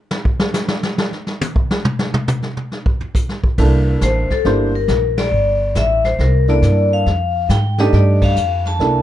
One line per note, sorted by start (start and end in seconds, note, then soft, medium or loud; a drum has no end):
0.11 snare loud
0.25 kick medium
0.40 snare medium
0.54 snare loud
0.54 hi-hat pedal medium
0.68 snare loud
0.83 snare loud
0.98 snare loud
1.13 snare soft
1.27 snare soft
1.41 hi-hat pedal medium
1.41 high tom loud
1.56 kick medium
1.71 snare loud
1.85 mid tom loud
1.99 snare medium
2.14 mid tom loud
2.28 hi-hat pedal medium
2.28 mid tom medium
2.42 snare soft
2.57 mid tom soft
2.72 snare soft
2.86 kick medium
3.00 floor tom soft
3.15 kick medium
3.15 hi-hat pedal medium
3.29 snare soft
3.44 kick medium
3.58 4.01 C2 medium
3.58 4.25 A#3 medium
3.58 4.26 D4 medium
3.58 4.26 E4 medium
3.58 4.26 A4 medium
3.58 brush sweep soft
3.58 kick medium
3.58 snare soft
3.58 crash medium
4.01 4.29 A1 medium
4.01 4.31 C5 medium
4.01 kick soft
4.01 snare medium
4.01 hi-hat pedal medium
4.30 4.45 A4 medium
4.30 muted upright bass stroke soft
4.30 kick soft
4.30 snare soft
4.45 4.87 G1 medium
4.45 4.72 A#3 medium
4.45 4.72 D4 medium
4.45 4.72 E4 medium
4.45 4.74 G4 medium
4.45 4.72 C5 medium
4.45 brush sweep soft
4.45 kick soft
4.45 snare soft
4.75 5.15 A#4 medium
4.88 5.31 A#1 medium
4.88 kick soft
4.88 snare medium
4.88 hi-hat pedal soft
5.18 5.72 D5 medium
5.18 snare medium
5.18 ride medium
5.31 5.74 G1 medium
5.31 brush sweep soft
5.75 6.18 A1 medium
5.75 6.05 E5 medium
5.75 kick soft
5.75 snare medium
5.75 hi-hat pedal medium
6.04 6.19 C5 medium
6.04 snare soft
6.19 6.61 C2 medium
6.19 6.48 A#4 medium
6.19 brush sweep soft
6.19 kick soft
6.19 snare soft
6.48 7.03 A#3 medium
6.48 7.04 D4 medium
6.48 7.04 E4 medium
6.48 7.04 A4 medium
6.48 6.90 D5 medium
6.48 snare soft
6.62 7.04 G2 medium
6.62 kick soft
6.62 snare medium
6.62 hi-hat pedal soft
6.93 7.46 F5 medium
7.06 7.48 F2 medium
7.06 brush sweep soft
7.06 kick soft
7.06 snare soft
7.49 7.91 G#2 medium
7.49 7.78 G5 medium
7.49 kick soft
7.49 snare medium
7.49 hi-hat pedal medium
7.78 8.34 A3 medium
7.78 8.34 D4 medium
7.78 8.34 D#4 medium
7.78 8.34 G4 medium
7.78 7.93 D#5 medium
7.78 snare medium
7.92 8.35 G2 medium
7.92 8.22 D5 medium
7.92 brush sweep soft
7.92 kick soft
7.92 snare soft
8.22 8.63 F5 medium
8.22 kick medium
8.22 ride medium
8.36 8.78 F2 medium
8.36 hi-hat pedal medium
8.65 9.02 A5 medium
8.65 snare soft
8.79 9.02 C2 medium
8.79 9.02 A#3 medium
8.79 9.02 D4 soft
8.79 9.02 E4 medium
8.79 9.02 A4 medium
8.79 brush sweep soft
8.79 kick soft
8.79 snare soft